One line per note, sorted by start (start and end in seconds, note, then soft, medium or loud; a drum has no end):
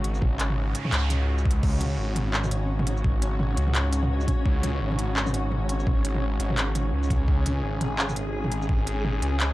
0.00 0.21 G#1 loud
0.00 9.53 G#2 medium
0.00 9.53 C#3 medium
0.00 9.53 C#4 medium
0.00 1.61 F#4 medium
0.04 closed hi-hat medium
0.14 shaker soft
0.22 0.74 G#1 medium
0.22 kick loud
0.22 mid tom medium
0.22 noise sweep medium
0.40 clap medium
0.40 closed hi-hat medium
0.50 mid tom medium
0.75 closed hi-hat medium
0.75 shaker soft
0.85 mid tom medium
0.92 1.62 C#2 medium
0.92 clap loud
0.92 closed hi-hat soft
1.10 closed hi-hat medium
1.10 mid tom medium
1.10 shaker medium
1.38 shaker soft
1.46 kick loud
1.51 closed hi-hat medium
1.63 1.97 C#2 medium
1.63 9.53 C#4 medium
1.63 7.26 F#4 medium
1.63 7.30 C#5 medium
1.63 kick loud
1.63 crash medium
1.81 closed hi-hat medium
1.81 mid tom medium
1.98 3.03 G#1 loud
2.16 closed hi-hat medium
2.16 mid tom medium
2.34 clap loud
2.44 mid tom medium
2.44 shaker medium
2.51 closed hi-hat medium
2.79 mid tom medium
2.87 closed hi-hat medium
2.97 shaker soft
3.04 3.56 G#1 medium
3.04 kick loud
3.04 mid tom medium
3.22 closed hi-hat medium
3.40 mid tom medium
3.57 4.27 C#2 loud
3.57 closed hi-hat medium
3.68 mid tom medium
3.75 clap loud
3.75 closed hi-hat soft
3.93 closed hi-hat medium
3.93 shaker medium
4.03 mid tom medium
4.21 shaker soft
4.28 kick loud
4.28 closed hi-hat medium
4.28 mid tom medium
4.46 4.80 C#2 medium
4.46 kick loud
4.63 closed hi-hat medium
4.63 mid tom medium
4.81 5.86 G#1 loud
4.91 mid tom medium
4.99 closed hi-hat medium
5.16 clap loud
5.27 mid tom medium
5.27 shaker medium
5.34 closed hi-hat medium
5.52 mid tom medium
5.69 closed hi-hat medium
5.80 shaker soft
5.87 6.38 G#1 medium
5.87 kick loud
5.87 mid tom medium
6.05 closed hi-hat medium
6.15 mid tom soft
6.40 6.91 G#1 loud
6.40 closed hi-hat medium
6.50 mid tom medium
6.58 clap loud
6.58 closed hi-hat soft
6.75 closed hi-hat medium
6.75 mid tom soft
6.75 shaker medium
6.93 7.27 C#2 loud
7.03 shaker soft
7.10 kick loud
7.10 closed hi-hat medium
7.10 mid tom medium
7.28 7.62 C#2 medium
7.28 9.53 G#4 medium
7.28 kick loud
7.46 closed hi-hat medium
7.46 mid tom medium
7.63 8.68 G#1 loud
7.81 closed hi-hat medium
7.81 mid tom medium
7.99 clap loud
8.09 mid tom medium
8.09 shaker medium
8.16 closed hi-hat medium
8.44 mid tom medium
8.52 closed hi-hat medium
8.62 shaker soft
8.69 9.21 G#1 loud
8.69 kick loud
8.69 mid tom medium
8.87 closed hi-hat medium
9.05 mid tom medium
9.22 9.53 C#2 medium
9.22 closed hi-hat medium
9.40 clap loud
9.40 closed hi-hat soft